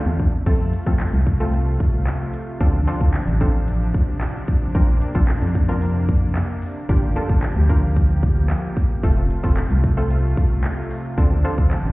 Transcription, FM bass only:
0.06 0.33 E2 medium
0.46 0.73 F2 loud
0.87 1.04 F2 medium
1.13 2.10 C2 medium
2.61 2.87 D2 loud
3.01 3.18 D2 medium
3.28 4.25 A1 medium
4.75 5.01 A#1 loud
5.15 5.33 A#1 medium
5.42 6.39 F2 medium
6.89 7.16 G1 loud
7.29 7.47 G1 medium
7.56 8.53 D2 medium
9.03 9.30 F1 loud
9.44 9.61 F1 medium
9.70 10.67 C2 medium
11.18 11.44 D2 loud
11.58 11.76 D2 medium
11.85 11.92 A1 medium

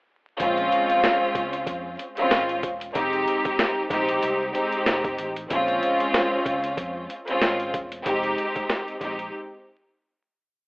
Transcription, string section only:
0.38 2.01 G#3 loud
0.38 2.01 C4 loud
0.38 2.01 C#4 loud
0.38 2.01 F4 loud
2.17 2.60 G#3 loud
2.17 2.60 C4 medium
2.17 2.60 C#4 medium
2.17 2.61 F4 loud
2.93 3.83 G#3 medium
2.93 3.83 C4 medium
2.93 3.84 D#4 medium
2.93 3.84 G4 loud
3.89 4.49 G#3 medium
3.89 4.50 C4 medium
3.89 4.50 D#4 medium
3.89 4.50 G4 loud
4.52 5.28 G#3 loud
4.52 5.28 C4 medium
4.52 5.29 D#4 medium
4.52 5.29 G4 loud
5.49 7.11 G#3 loud
5.49 7.12 C4 loud
5.49 7.12 C#4 loud
5.49 7.12 F4 loud
7.28 7.70 G#3 loud
7.28 7.71 C4 medium
7.28 7.71 C#4 medium
7.28 7.71 F4 loud
8.03 8.94 G#3 loud
8.03 8.94 C4 medium
8.03 8.94 D#4 medium
8.03 8.95 G4 loud
9.00 9.33 G#3 medium
9.00 9.33 C4 medium
9.00 9.33 D#4 medium
9.00 9.33 G4 loud

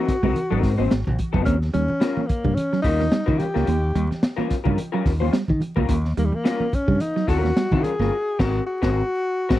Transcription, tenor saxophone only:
0.00 1.15 F#4 loud
1.46 1.58 C#4 medium
1.74 2.29 C#4 medium
2.27 2.56 A#3 medium
2.55 2.82 C#4 medium
2.82 3.40 D#4 loud
3.38 4.22 G4 loud
6.19 6.27 A#3 medium
6.25 6.36 G3 medium
6.35 6.76 A#3 loud
6.75 7.03 C#4 medium
7.01 7.30 D#4 medium
7.28 7.85 F#4 loud
7.83 8.41 G#4 loud
8.39 8.66 F#4 loud
8.67 9.59 F#4 loud

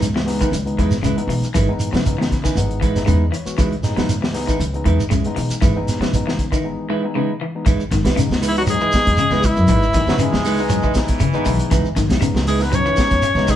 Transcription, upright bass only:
0.00 0.43 C#2 medium
0.52 0.74 C#2 medium
0.78 0.90 E2 medium
1.02 1.15 C#2 medium
1.27 1.40 B2 medium
1.41 muted upright bass stroke soft
1.55 1.66 G#1 loud
1.80 muted upright bass stroke soft
1.93 2.47 C#3 medium
2.56 2.99 G#1 medium
3.08 3.29 E2 medium
3.46 muted upright bass stroke soft
3.58 3.80 C#2 medium
3.97 4.51 C#2 medium
4.60 4.82 C#2 medium
4.86 4.97 E2 medium
5.12 5.23 C#2 medium
5.37 5.49 B2 medium
5.50 muted upright bass stroke soft
5.62 5.74 G#1 loud
5.87 muted upright bass stroke soft
6.00 6.54 C#3 medium
7.66 7.77 C#2 medium
7.91 8.03 G#1 medium
8.05 8.15 C#2 medium
8.16 muted upright bass stroke soft
8.29 8.83 C#2 medium
8.94 muted upright bass stroke soft
9.07 9.17 E2 medium
9.18 muted upright bass stroke soft
9.31 9.53 C#2 medium
9.57 9.67 F#2 medium
9.69 9.90 G#1 loud
9.94 10.06 G#1 medium
10.07 10.17 C#3 medium
10.33 11.07 C#2 medium
11.20 11.32 C#3 medium
11.33 muted upright bass stroke soft
11.46 11.57 B1 medium
11.71 11.83 C#2 medium
11.96 12.08 G#1 medium
12.10 12.20 C#2 medium
12.21 muted upright bass stroke soft
12.35 12.88 C#2 medium
12.98 muted upright bass stroke soft
13.11 13.21 E2 medium
13.22 muted upright bass stroke soft
13.35 13.56 C#2 loud

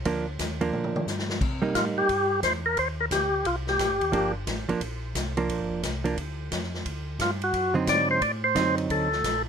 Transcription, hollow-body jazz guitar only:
0.06 0.25 F3 medium
0.06 0.25 A#3 medium
0.06 0.26 D4 medium
0.61 1.05 F3 medium
0.61 1.05 A#3 medium
0.61 1.05 D4 medium
1.62 2.06 G3 medium
1.62 2.06 A#3 medium
1.62 2.07 D#4 medium
4.12 4.32 F3 medium
4.12 4.33 A#3 medium
4.12 4.33 D4 medium
4.69 4.80 F3 medium
4.69 4.80 A#3 medium
4.69 4.80 D4 medium
5.37 5.81 F3 medium
5.37 5.81 A#3 medium
5.37 5.82 D4 medium
6.04 6.16 F3 medium
6.04 6.16 A#3 medium
6.04 6.16 D4 medium
7.74 8.19 D3 medium
7.74 8.19 F#3 medium
7.74 8.19 C4 medium
7.74 8.19 D#4 medium
8.55 9.07 D3 medium
8.55 9.07 F#3 medium
8.55 9.07 C4 medium
8.55 9.08 D#4 medium

